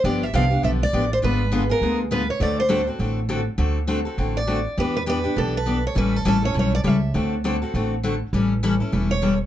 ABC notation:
X:1
M:4/4
L:1/8
Q:"Swing" 1/4=202
K:Dmix
V:1 name="Steel-string acoustic guitar"
d e =f2 e d2 c | B3 _B2 z =B ^c | d c2 z4 z | z4 z d3 |
B B B2 A B2 ^c | B A A ^c c d e2- | e z6 z | z4 z ^c2 z |]
V:2 name="Steel-string acoustic guitar"
[D,=F,B,DG] z [D,F,B,DG] [B,DG] [D,F,B,DG] z [D,F,B,DG] z | [D,^G,B,^E^G] z [D,G,B,EG] [B,EG] [D,G,B,EG] z [D,G,B,EG] z | [D,A,CFA] z [D,A,CFA] [CFA] [D,A,CFA] z [D,A,CFA] z | [D,A,CFA] z [D,A,CFA] [CFA] [D,A,CFA] z [D,A,CFA] z |
[E,B,DG] z [E,B,DG] [B,DG] [E,B,DG] z [E,B,DG] z | [E,G,^CEA] z [E,G,CEA] [CEA] [E,G,CEA] z [E,G,CEA] z | [D,A,CFA] z [D,A,CFA] [CFA] [D,A,CFA] z [D,A,CFA] z | [E,G,^CEA] z [E,G,CEA] [CEA] [E,G,CEA] z [E,G,CEA] z |]
V:3 name="Upright bass" clef=bass
G,,,2 C,,2 B,,,2 A,,,2 | ^G,,,4 D,,4 | D,,4 A,,,4 | D,,4 A,,,4 |
E,,4 B,,,4 | A,,,2 A,,,2 B,,,2 ^C,,2 | D,,4 A,,,4 | A,,,4 E,,,4 |]